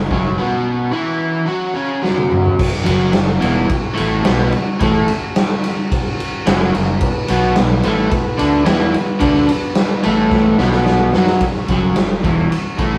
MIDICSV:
0, 0, Header, 1, 7, 480
1, 0, Start_track
1, 0, Tempo, 551471
1, 339, Time_signature, 4, 2, 24, 8
1, 11300, End_track
2, 0, Start_track
2, 0, Title_t, "Transistor combo organ"
2, 0, Program_c, 0, 18
2, 0, Note_on_c, 0, 61, 62
2, 0, Note_on_c, 0, 66, 64
2, 0, Note_on_c, 0, 70, 76
2, 2219, Note_off_c, 0, 61, 0
2, 2234, Note_off_c, 0, 66, 0
2, 2237, Note_off_c, 0, 70, 0
2, 2258, Note_on_c, 0, 61, 76
2, 2273, Note_on_c, 0, 66, 74
2, 2277, Note_on_c, 0, 70, 78
2, 5622, Note_on_c, 0, 78, 71
2, 5849, Note_off_c, 0, 78, 0
2, 5852, Note_on_c, 0, 82, 73
2, 6070, Note_off_c, 0, 61, 0
2, 6077, Note_off_c, 0, 66, 0
2, 6079, Note_off_c, 0, 70, 0
2, 6083, Note_off_c, 0, 82, 0
2, 6090, Note_on_c, 0, 59, 79
2, 6102, Note_on_c, 0, 66, 67
2, 6113, Note_on_c, 0, 71, 79
2, 8749, Note_on_c, 0, 82, 67
2, 8848, Note_on_c, 0, 80, 74
2, 8858, Note_off_c, 0, 82, 0
2, 8952, Note_on_c, 0, 78, 70
2, 8967, Note_off_c, 0, 80, 0
2, 9413, Note_off_c, 0, 78, 0
2, 9435, Note_on_c, 0, 75, 79
2, 9892, Note_on_c, 0, 61, 70
2, 9894, Note_off_c, 0, 75, 0
2, 9898, Note_off_c, 0, 59, 0
2, 9899, Note_off_c, 0, 66, 0
2, 9909, Note_off_c, 0, 71, 0
2, 9910, Note_on_c, 0, 66, 66
2, 9925, Note_on_c, 0, 70, 73
2, 11300, Note_off_c, 0, 61, 0
2, 11300, Note_off_c, 0, 66, 0
2, 11300, Note_off_c, 0, 70, 0
2, 11300, End_track
3, 0, Start_track
3, 0, Title_t, "Overdriven electric guitar"
3, 0, Program_c, 1, 29
3, 94, Note_on_c, 1, 42, 88
3, 104, Note_on_c, 1, 54, 100
3, 328, Note_on_c, 1, 47, 86
3, 330, Note_off_c, 1, 42, 0
3, 333, Note_on_c, 1, 59, 99
3, 335, Note_off_c, 1, 54, 0
3, 793, Note_off_c, 1, 47, 0
3, 797, Note_on_c, 1, 52, 85
3, 805, Note_off_c, 1, 59, 0
3, 808, Note_on_c, 1, 64, 95
3, 1270, Note_off_c, 1, 52, 0
3, 1273, Note_on_c, 1, 54, 87
3, 1284, Note_off_c, 1, 64, 0
3, 1288, Note_on_c, 1, 66, 109
3, 1511, Note_off_c, 1, 54, 0
3, 1514, Note_on_c, 1, 49, 79
3, 1517, Note_off_c, 1, 66, 0
3, 1521, Note_on_c, 1, 61, 91
3, 1758, Note_on_c, 1, 42, 81
3, 1763, Note_off_c, 1, 49, 0
3, 1765, Note_on_c, 1, 54, 99
3, 1767, Note_off_c, 1, 61, 0
3, 2247, Note_off_c, 1, 42, 0
3, 2250, Note_off_c, 1, 54, 0
3, 2474, Note_on_c, 1, 42, 89
3, 2485, Note_on_c, 1, 54, 104
3, 2709, Note_off_c, 1, 42, 0
3, 2720, Note_on_c, 1, 42, 73
3, 2730, Note_off_c, 1, 54, 0
3, 2927, Note_off_c, 1, 42, 0
3, 2959, Note_on_c, 1, 40, 73
3, 2968, Note_on_c, 1, 52, 94
3, 3207, Note_off_c, 1, 40, 0
3, 3212, Note_off_c, 1, 52, 0
3, 3430, Note_on_c, 1, 45, 95
3, 3445, Note_on_c, 1, 57, 99
3, 3683, Note_off_c, 1, 45, 0
3, 3690, Note_off_c, 1, 57, 0
3, 3690, Note_on_c, 1, 47, 88
3, 3699, Note_on_c, 1, 59, 95
3, 3933, Note_off_c, 1, 47, 0
3, 3937, Note_off_c, 1, 59, 0
3, 4176, Note_on_c, 1, 45, 95
3, 4189, Note_on_c, 1, 57, 104
3, 4416, Note_off_c, 1, 45, 0
3, 4423, Note_off_c, 1, 57, 0
3, 5622, Note_on_c, 1, 42, 90
3, 5631, Note_on_c, 1, 54, 109
3, 5853, Note_off_c, 1, 42, 0
3, 5863, Note_off_c, 1, 54, 0
3, 5863, Note_on_c, 1, 42, 83
3, 6058, Note_off_c, 1, 42, 0
3, 6347, Note_on_c, 1, 47, 90
3, 6357, Note_on_c, 1, 59, 102
3, 6569, Note_off_c, 1, 47, 0
3, 6580, Note_on_c, 1, 47, 81
3, 6585, Note_off_c, 1, 59, 0
3, 6776, Note_off_c, 1, 47, 0
3, 6833, Note_on_c, 1, 45, 79
3, 6838, Note_on_c, 1, 57, 91
3, 7053, Note_off_c, 1, 45, 0
3, 7065, Note_off_c, 1, 57, 0
3, 7293, Note_on_c, 1, 50, 87
3, 7303, Note_on_c, 1, 62, 100
3, 7522, Note_off_c, 1, 50, 0
3, 7526, Note_on_c, 1, 52, 86
3, 7531, Note_off_c, 1, 62, 0
3, 7535, Note_on_c, 1, 64, 94
3, 7768, Note_off_c, 1, 52, 0
3, 7773, Note_off_c, 1, 64, 0
3, 8001, Note_on_c, 1, 50, 99
3, 8007, Note_on_c, 1, 62, 112
3, 8246, Note_off_c, 1, 50, 0
3, 8249, Note_off_c, 1, 62, 0
3, 8735, Note_on_c, 1, 45, 79
3, 8740, Note_on_c, 1, 57, 96
3, 9212, Note_off_c, 1, 45, 0
3, 9212, Note_off_c, 1, 57, 0
3, 9215, Note_on_c, 1, 59, 93
3, 9216, Note_on_c, 1, 47, 92
3, 9692, Note_off_c, 1, 47, 0
3, 9692, Note_off_c, 1, 59, 0
3, 9701, Note_on_c, 1, 54, 92
3, 9711, Note_on_c, 1, 66, 111
3, 9934, Note_off_c, 1, 54, 0
3, 9940, Note_off_c, 1, 66, 0
3, 10181, Note_on_c, 1, 42, 79
3, 10186, Note_on_c, 1, 54, 85
3, 10403, Note_off_c, 1, 42, 0
3, 10414, Note_on_c, 1, 42, 71
3, 10417, Note_off_c, 1, 54, 0
3, 10610, Note_off_c, 1, 42, 0
3, 10642, Note_on_c, 1, 40, 80
3, 10657, Note_on_c, 1, 52, 78
3, 10885, Note_off_c, 1, 40, 0
3, 10892, Note_off_c, 1, 52, 0
3, 11121, Note_on_c, 1, 45, 77
3, 11129, Note_on_c, 1, 57, 84
3, 11300, Note_off_c, 1, 45, 0
3, 11300, Note_off_c, 1, 57, 0
3, 11300, End_track
4, 0, Start_track
4, 0, Title_t, "Fingered electric bass"
4, 0, Program_c, 2, 33
4, 95, Note_on_c, 2, 30, 100
4, 321, Note_off_c, 2, 30, 0
4, 2514, Note_on_c, 2, 30, 108
4, 2735, Note_off_c, 2, 30, 0
4, 2757, Note_on_c, 2, 30, 89
4, 2977, Note_off_c, 2, 30, 0
4, 2992, Note_on_c, 2, 28, 77
4, 3214, Note_off_c, 2, 28, 0
4, 3481, Note_on_c, 2, 33, 98
4, 3700, Note_off_c, 2, 33, 0
4, 3717, Note_on_c, 2, 35, 98
4, 3937, Note_off_c, 2, 35, 0
4, 4189, Note_on_c, 2, 33, 100
4, 4413, Note_off_c, 2, 33, 0
4, 5635, Note_on_c, 2, 30, 98
4, 5856, Note_off_c, 2, 30, 0
4, 5884, Note_on_c, 2, 30, 88
4, 6100, Note_off_c, 2, 30, 0
4, 6357, Note_on_c, 2, 35, 99
4, 6576, Note_off_c, 2, 35, 0
4, 6598, Note_on_c, 2, 35, 84
4, 6817, Note_off_c, 2, 35, 0
4, 6836, Note_on_c, 2, 33, 84
4, 7055, Note_off_c, 2, 33, 0
4, 7321, Note_on_c, 2, 38, 91
4, 7537, Note_off_c, 2, 38, 0
4, 7557, Note_on_c, 2, 40, 103
4, 7775, Note_off_c, 2, 40, 0
4, 8023, Note_on_c, 2, 38, 90
4, 8247, Note_off_c, 2, 38, 0
4, 8756, Note_on_c, 2, 33, 92
4, 9196, Note_off_c, 2, 33, 0
4, 9223, Note_on_c, 2, 35, 95
4, 9669, Note_off_c, 2, 35, 0
4, 9706, Note_on_c, 2, 42, 94
4, 9928, Note_off_c, 2, 42, 0
4, 10178, Note_on_c, 2, 30, 103
4, 10403, Note_off_c, 2, 30, 0
4, 10425, Note_on_c, 2, 30, 83
4, 10647, Note_off_c, 2, 30, 0
4, 10663, Note_on_c, 2, 28, 75
4, 10886, Note_off_c, 2, 28, 0
4, 11137, Note_on_c, 2, 33, 90
4, 11300, Note_off_c, 2, 33, 0
4, 11300, End_track
5, 0, Start_track
5, 0, Title_t, "Muted fingered electric bass strokes"
5, 3221, Note_on_c, 9, 29, 44
5, 3308, Note_off_c, 9, 29, 0
5, 3970, Note_on_c, 9, 29, 46
5, 4057, Note_off_c, 9, 29, 0
5, 4439, Note_on_c, 9, 29, 47
5, 4526, Note_off_c, 9, 29, 0
5, 7074, Note_on_c, 9, 29, 41
5, 7161, Note_off_c, 9, 29, 0
5, 7792, Note_on_c, 9, 29, 49
5, 7879, Note_off_c, 9, 29, 0
5, 8284, Note_on_c, 9, 29, 45
5, 8371, Note_off_c, 9, 29, 0
5, 10909, Note_on_c, 9, 29, 38
5, 10996, Note_off_c, 9, 29, 0
5, 11300, End_track
6, 0, Start_track
6, 0, Title_t, "Muted overdriven electric guitar strokes"
6, 3218, Note_on_c, 9, 29, 59
6, 3306, Note_off_c, 9, 29, 0
6, 3939, Note_on_c, 9, 29, 61
6, 4026, Note_off_c, 9, 29, 0
6, 4418, Note_on_c, 9, 29, 61
6, 4505, Note_off_c, 9, 29, 0
6, 7057, Note_on_c, 9, 29, 65
6, 7144, Note_off_c, 9, 29, 0
6, 7771, Note_on_c, 9, 29, 57
6, 7858, Note_off_c, 9, 29, 0
6, 8249, Note_on_c, 9, 29, 63
6, 8336, Note_off_c, 9, 29, 0
6, 10889, Note_on_c, 9, 29, 56
6, 10976, Note_off_c, 9, 29, 0
6, 11300, End_track
7, 0, Start_track
7, 0, Title_t, "Drums"
7, 93, Note_on_c, 9, 36, 101
7, 180, Note_off_c, 9, 36, 0
7, 1778, Note_on_c, 9, 38, 66
7, 1865, Note_off_c, 9, 38, 0
7, 1898, Note_on_c, 9, 48, 63
7, 1985, Note_off_c, 9, 48, 0
7, 2012, Note_on_c, 9, 45, 88
7, 2099, Note_off_c, 9, 45, 0
7, 2136, Note_on_c, 9, 43, 82
7, 2223, Note_off_c, 9, 43, 0
7, 2255, Note_on_c, 9, 49, 127
7, 2258, Note_on_c, 9, 36, 112
7, 2342, Note_off_c, 9, 49, 0
7, 2345, Note_off_c, 9, 36, 0
7, 2380, Note_on_c, 9, 38, 33
7, 2467, Note_off_c, 9, 38, 0
7, 2490, Note_on_c, 9, 51, 90
7, 2577, Note_off_c, 9, 51, 0
7, 2723, Note_on_c, 9, 51, 99
7, 2727, Note_on_c, 9, 38, 104
7, 2810, Note_off_c, 9, 51, 0
7, 2814, Note_off_c, 9, 38, 0
7, 2976, Note_on_c, 9, 51, 73
7, 3063, Note_off_c, 9, 51, 0
7, 3215, Note_on_c, 9, 51, 98
7, 3219, Note_on_c, 9, 36, 112
7, 3302, Note_off_c, 9, 51, 0
7, 3306, Note_off_c, 9, 36, 0
7, 3458, Note_on_c, 9, 51, 74
7, 3545, Note_off_c, 9, 51, 0
7, 3695, Note_on_c, 9, 51, 112
7, 3700, Note_on_c, 9, 38, 127
7, 3782, Note_off_c, 9, 51, 0
7, 3787, Note_off_c, 9, 38, 0
7, 3936, Note_on_c, 9, 51, 62
7, 4023, Note_off_c, 9, 51, 0
7, 4181, Note_on_c, 9, 51, 102
7, 4186, Note_on_c, 9, 36, 120
7, 4268, Note_off_c, 9, 51, 0
7, 4273, Note_off_c, 9, 36, 0
7, 4420, Note_on_c, 9, 51, 83
7, 4507, Note_off_c, 9, 51, 0
7, 4663, Note_on_c, 9, 51, 100
7, 4667, Note_on_c, 9, 38, 111
7, 4750, Note_off_c, 9, 51, 0
7, 4754, Note_off_c, 9, 38, 0
7, 4905, Note_on_c, 9, 51, 80
7, 4992, Note_off_c, 9, 51, 0
7, 5150, Note_on_c, 9, 36, 114
7, 5151, Note_on_c, 9, 51, 106
7, 5237, Note_off_c, 9, 36, 0
7, 5238, Note_off_c, 9, 51, 0
7, 5398, Note_on_c, 9, 51, 77
7, 5485, Note_off_c, 9, 51, 0
7, 5628, Note_on_c, 9, 51, 120
7, 5633, Note_on_c, 9, 38, 125
7, 5715, Note_off_c, 9, 51, 0
7, 5720, Note_off_c, 9, 38, 0
7, 5871, Note_on_c, 9, 51, 74
7, 5958, Note_off_c, 9, 51, 0
7, 6098, Note_on_c, 9, 51, 108
7, 6104, Note_on_c, 9, 36, 111
7, 6185, Note_off_c, 9, 51, 0
7, 6191, Note_off_c, 9, 36, 0
7, 6338, Note_on_c, 9, 51, 85
7, 6425, Note_off_c, 9, 51, 0
7, 6577, Note_on_c, 9, 51, 99
7, 6581, Note_on_c, 9, 38, 117
7, 6664, Note_off_c, 9, 51, 0
7, 6668, Note_off_c, 9, 38, 0
7, 6818, Note_on_c, 9, 51, 82
7, 6905, Note_off_c, 9, 51, 0
7, 7061, Note_on_c, 9, 51, 96
7, 7065, Note_on_c, 9, 36, 120
7, 7148, Note_off_c, 9, 51, 0
7, 7152, Note_off_c, 9, 36, 0
7, 7303, Note_on_c, 9, 51, 74
7, 7390, Note_off_c, 9, 51, 0
7, 7538, Note_on_c, 9, 51, 98
7, 7543, Note_on_c, 9, 38, 126
7, 7625, Note_off_c, 9, 51, 0
7, 7630, Note_off_c, 9, 38, 0
7, 7783, Note_on_c, 9, 51, 67
7, 7870, Note_off_c, 9, 51, 0
7, 8011, Note_on_c, 9, 51, 102
7, 8021, Note_on_c, 9, 36, 112
7, 8098, Note_off_c, 9, 51, 0
7, 8108, Note_off_c, 9, 36, 0
7, 8142, Note_on_c, 9, 38, 33
7, 8229, Note_off_c, 9, 38, 0
7, 8257, Note_on_c, 9, 51, 84
7, 8344, Note_off_c, 9, 51, 0
7, 8487, Note_on_c, 9, 51, 93
7, 8492, Note_on_c, 9, 38, 115
7, 8574, Note_off_c, 9, 51, 0
7, 8579, Note_off_c, 9, 38, 0
7, 8734, Note_on_c, 9, 51, 77
7, 8821, Note_off_c, 9, 51, 0
7, 8977, Note_on_c, 9, 38, 61
7, 8978, Note_on_c, 9, 36, 107
7, 9064, Note_off_c, 9, 38, 0
7, 9065, Note_off_c, 9, 36, 0
7, 9213, Note_on_c, 9, 38, 73
7, 9300, Note_off_c, 9, 38, 0
7, 9329, Note_on_c, 9, 38, 69
7, 9416, Note_off_c, 9, 38, 0
7, 9450, Note_on_c, 9, 38, 98
7, 9537, Note_off_c, 9, 38, 0
7, 9691, Note_on_c, 9, 38, 96
7, 9778, Note_off_c, 9, 38, 0
7, 9806, Note_on_c, 9, 38, 93
7, 9893, Note_off_c, 9, 38, 0
7, 9927, Note_on_c, 9, 51, 100
7, 9931, Note_on_c, 9, 36, 112
7, 10014, Note_off_c, 9, 51, 0
7, 10018, Note_off_c, 9, 36, 0
7, 10053, Note_on_c, 9, 38, 32
7, 10140, Note_off_c, 9, 38, 0
7, 10168, Note_on_c, 9, 51, 79
7, 10173, Note_on_c, 9, 36, 113
7, 10255, Note_off_c, 9, 51, 0
7, 10260, Note_off_c, 9, 36, 0
7, 10407, Note_on_c, 9, 51, 91
7, 10411, Note_on_c, 9, 38, 107
7, 10494, Note_off_c, 9, 51, 0
7, 10498, Note_off_c, 9, 38, 0
7, 10655, Note_on_c, 9, 36, 110
7, 10657, Note_on_c, 9, 51, 72
7, 10742, Note_off_c, 9, 36, 0
7, 10744, Note_off_c, 9, 51, 0
7, 10896, Note_on_c, 9, 51, 87
7, 10983, Note_off_c, 9, 51, 0
7, 11128, Note_on_c, 9, 51, 66
7, 11131, Note_on_c, 9, 36, 107
7, 11215, Note_off_c, 9, 51, 0
7, 11218, Note_off_c, 9, 36, 0
7, 11300, End_track
0, 0, End_of_file